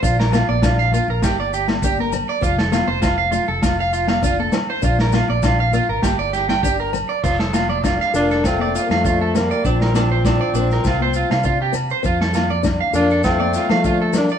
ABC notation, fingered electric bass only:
X:1
M:4/4
L:1/16
Q:1/4=100
K:F
V:1 name="Fingered electric bass" clef=bass
B,,,3 B,,,4 B,,, G,,,8 | F,,,3 F,,,4 F,,,8 z | B,,,3 B,,,4 _A,,, G,,,8 | F,,,6 F,,,4- F,,, F,,4- F,, |
B,,,6 B,,,2 C,,3 C,4- C, | F,,6 F,,4- F,, F,4- F, |]